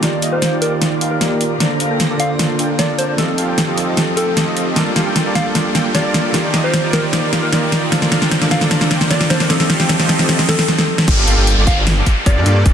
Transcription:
Already playing: A#3 G4 D5 F5, riser
0.01 D#3 A#3 D#4 F4 G4 D5, snare, closed hi-hat
0.22 A#3 D#4 F4 G4 D#5, closed hi-hat
0.32 A#3 D#4 F4 G4 C5 F5
0.42 snare, closed hi-hat
0.52 A#3 D#4 F4 G4 D5
0.60 D#3 D#4 F4 G4 A#4, closed hi-hat
0.64 D5
0.82 snare, closed hi-hat
1.01 A#3 D#4 F4 G4 F5, closed hi-hat
1.11 A#4
1.21 A#3 D#4 F4 G4 D5, snare, closed hi-hat
1.41 closed hi-hat
1.58 D3 A#3 D4 F4 A4 D5, snare, closed hi-hat
1.62 C5
1.80 A#3 D4 F4 A4 F5, closed hi-hat
1.90 A#3 D4 F4 A4 G5
2.00 snare, closed hi-hat
2.10 A#3 D4 F4 A4 D5
2.18 D3 D4 F4 A4 F5, closed hi-hat
2.22 C5
2.39 snare, closed hi-hat
2.59 A#3 D4 F4 A4 G5, closed hi-hat
2.79 A#3 D4 F4 A4 D5, snare, closed hi-hat
2.98 C5, closed hi-hat
3.09 C5
3.16 F3 A3 C4 D#4 F4 G4 A4 C5 D#5, snare, closed hi-hat
3.20 A4
3.28 A4
3.38 C4 F4 G4 A4 F5, closed hi-hat
3.48 C4 F4 G4 A4 G5
3.58 snare, closed hi-hat
3.68 C4 F4 G4 A4 D#5
3.75 F3 C4 D#4 G4, closed hi-hat
3.80 A4
3.97 snare, closed hi-hat
4.17 C4 F4 G4 A4 G5, closed hi-hat
4.37 C4 F4 G4 A4 D#5, snare, closed hi-hat
4.57 closed hi-hat
4.74 G3 A#3 D4 F4 G4 A4 D5 A5, snare, closed hi-hat
4.78 A#4
4.96 A#3 F4 G4 A4 F5, snare, closed hi-hat
5.06 A#3 F4 G4 A4 G5
5.16 snare, closed hi-hat
5.26 A#3 F4 G4 A4 D5
5.33 G3 A#3 D4 F4 A4 F5, snare, closed hi-hat
5.55 snare, closed hi-hat
5.75 A#3 F4 G4 A4 G5, snare, closed hi-hat
5.94 A#3 F4 G4 A4 D5, snare, closed hi-hat
6.14 snare, closed hi-hat
6.32 D#3 A#3 D#4 F4 G4 D5, snare, closed hi-hat
6.54 A#3 D#4 F4 G4 D#5, snare, closed hi-hat
6.64 A#3 D#4 F4 G4 C5 F5
6.74 snare, closed hi-hat
6.84 A#3 D#4 F4 G4 D5
6.91 D#3 D#4 F4 G4 A#4, snare, closed hi-hat
6.95 D5
7.13 snare, closed hi-hat
7.33 A#3 D#4 F4 G4 F5, snare, closed hi-hat
7.43 A#4
7.52 A#3 D#4 F4 G4 D5, snare, closed hi-hat
7.72 snare, closed hi-hat
7.90 D3 A#3 D4 F4 A4 D5, snare, closed hi-hat
7.94 C5
8.02 snare
8.12 A#3 D4 F4 A4 F5, snare, closed hi-hat
8.22 A#3 D4 F4 A4 G5, snare
8.31 snare, closed hi-hat
8.42 A#3 D4 F4 A4 D5, snare
8.49 D3 D4 F4 A4 F5, snare, closed hi-hat
8.53 C5
8.61 snare
8.71 snare, closed hi-hat
8.81 snare
8.91 A#3 D4 F4 A4 G5, snare, closed hi-hat
9.01 snare
9.10 A#3 D4 F4 A4 D5, snare, closed hi-hat
9.21 snare
9.30 C5, snare, closed hi-hat
9.40 C5, snare
9.48 F3 G3 C4 D#4 F4 G4 A4 C5 D#5, snare, closed hi-hat
9.60 A4, snare
9.70 C4 F4 G4 A4 F5, snare, closed hi-hat
9.80 C4 F4 G4 A4 G5, snare
9.89 snare, closed hi-hat
9.99 C4 F4 G4 A4 D#5, snare
10.07 F3 C4 D#4 G4 A4, snare, closed hi-hat
10.19 snare
10.29 snare, closed hi-hat
10.39 snare
10.48 A4, snare, closed hi-hat
10.59 snare
10.68 snare
10.79 snare
10.98 snare
11.08 G1 A#3 F4 G4 A4 D5, kick, closed hi-hat, crash, downlifter
11.27 G1 A#3 F4 G4 A4 F5, closed hi-hat
11.38 G1 A#3 F4 G4 A4 G5
11.47 closed hi-hat
11.57 G1 A#3 F4 G4 A4 D5
11.67 F5, kick, closed hi-hat
11.87 snare, closed hi-hat
12.06 kick, closed hi-hat
12.26 G1 A#3 F4 G4 A4 D5 F5, kick, closed hi-hat
12.36 G2 A#3 F4 G4 A4 D5
12.46 G2 A#3 F4 G4 A4 D5, closed hi-hat
12.66 D#1 A#3 D#4 F4 G4 D5, kick, closed hi-hat

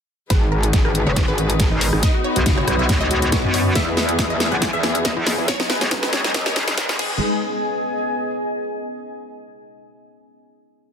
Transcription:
0.30 G#1 G#3 B3 D#4 B4, kick, snare, closed hi-hat, riser
0.39 D#4 G#4
0.52 A#4 D#5
0.63 D#4, closed hi-hat
0.73 G#1 D#4, kick, snare, closed hi-hat
0.84 A#4 B5, cross-stick
0.95 D#4, closed hi-hat
1.06 F#1 C#5
1.16 D#4, kick, snare, closed hi-hat
1.28 G#1 B4
1.38 D#4, closed hi-hat
1.50 D#4, closed hi-hat
1.60 A#4, kick, snare, closed hi-hat
1.71 G#1 D#4
1.81 A#4, open hi-hat
1.93 G#1 D#4, cross-stick
2.03 B3 F#4 D#5, kick, snare, closed hi-hat
2.13 F#4
2.24 C#5
2.36 B1 F#4, closed hi-hat
2.46 F#1 F#4, kick, snare, closed hi-hat
2.57 C#5, cross-stick
2.67 B1 F#4, cross-stick, closed hi-hat
2.79 E5
2.89 C#2 F#4, kick, snare, closed hi-hat
3.01 D#5
3.11 F#4, closed hi-hat
3.22 F#4, closed hi-hat
3.32 B1 C#5, kick, snare, closed hi-hat
3.44 F#2 F#4
3.54 C#5, open hi-hat
3.66 F#4
3.75 E2 E3 G#4 E5, kick, snare, closed hi-hat
3.84 E4 E5
3.88 G#4
3.97 D#5, snare
4.09 E4, closed hi-hat
4.19 E2 E4, kick, snare, closed hi-hat
4.30 D#5
4.37 E4 G#5, snare, closed hi-hat
4.52 B1 F#5
4.62 E4, kick, snare, closed hi-hat
4.73 E2 E5
4.83 E4, snare, closed hi-hat
4.95 E4, closed hi-hat
5.05 D#5, kick, snare, closed hi-hat
5.16 E2 E4
5.26 D#5, snare, open hi-hat
5.38 E2 E4
5.48 C#3 G#3 C#4 D#4 C#5, kick, snare, closed hi-hat
5.60 C#4, snare
5.70 B4, snare
5.81 C#2 C#4 D#5, snare, closed hi-hat
5.91 B1 C#4, kick, snare, closed hi-hat
6.03 B4, snare
6.13 C#2 C#4, snare, closed hi-hat
6.24 D#5, snare
6.34 D#2 C#4, kick, snare, closed hi-hat
6.46 C#5, snare
6.56 G#1 C#4, snare, closed hi-hat
6.68 C#4, snare, closed hi-hat
6.78 D#2 A#4, kick, snare, closed hi-hat
6.89 C#4, snare
6.99 G#1 G#3 B3 D#4 G#4 B4, kick, crash
7.06 G#4
7.35 D#5
7.40 G#5

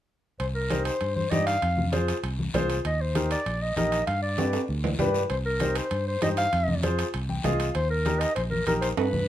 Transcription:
0.40 C2 C5, high conga, high timbale, long guiro
0.55 A#4
0.70 D#4 G4 C5, high conga, high timbale, short guiro
0.85 C5, high timbale, short guiro
1.01 G2, high conga, high timbale, long guiro
1.16 C5, high conga
1.31 G2 D#4 G4 D5 D#5, high conga, high timbale, low timbale, short guiro
1.46 F5, high timbale, short guiro
1.62 F2, high conga, high timbale, long guiro
1.78 high conga, low conga
1.92 F4 G#4 C5, high conga, high timbale, short guiro
2.08 high timbale, short guiro
2.23 C2, high conga, high timbale, long guiro
2.39 high conga
2.54 C2 F4 G#4 C5, high conga, low conga, high timbale, low timbale, short guiro
2.70 high timbale, short guiro
2.85 D#2 D#5, high conga, high timbale, long guiro
3.01 C5
3.15 D#4 G4 A#4, high conga, high timbale, short guiro
3.31 D5, high timbale, short guiro
3.46 A#1, high conga, high timbale, long guiro
3.62 D#5
3.76 A#1 D#4 G4 A#4 D#5, high conga, high timbale, short guiro
3.92 high timbale, short guiro
4.07 G2 F5, high conga, high timbale, long guiro
4.22 D5
4.38 D4 G4 B4, high conga, high timbale, short guiro
4.53 high timbale, short guiro
4.68 D2, high conga, long guiro
4.84 high conga, low timbale
4.99 G2 D4 G4 B4, high conga, low conga, low timbale, short guiro
5.14 low timbale, short guiro
5.30 C2 C5, high conga, high timbale, long guiro
5.45 A#4
5.60 D#4 G4 C5, high conga, high timbale, short guiro
5.75 C5, high timbale, short guiro
5.91 G2, high conga, high timbale, long guiro
6.07 C5
6.21 G2 D#4 G4 C5 D#5, high conga, high timbale, low timbale, short guiro
6.37 F5, high timbale, short guiro
6.53 F2, high conga, high timbale, long guiro
6.68 high conga, low conga
6.83 F4 G#4 C5, high conga, high timbale, short guiro
6.98 high timbale, short guiro
7.14 C2, high conga, high timbale, long guiro
7.29 G5, high conga
7.44 C2 F4 G#4 D#5 F5, high conga, low conga, high timbale, low timbale, short guiro
7.60 high timbale, short guiro
7.75 D#2 C5, high conga, high timbale, long guiro
7.90 A#4
8.05 D#4 G4 A#4, high conga, high timbale, short guiro
8.20 D#5, high timbale, short guiro
8.35 A#1 C5, high conga, high timbale, long guiro
8.50 A#4, high conga
8.66 A#1 D#4 G4 A#4, high conga, high timbale, short guiro
8.81 C5, high timbale, short guiro
8.97 G2 B4, high conga, high timbale, long guiro
9.13 high conga, low conga

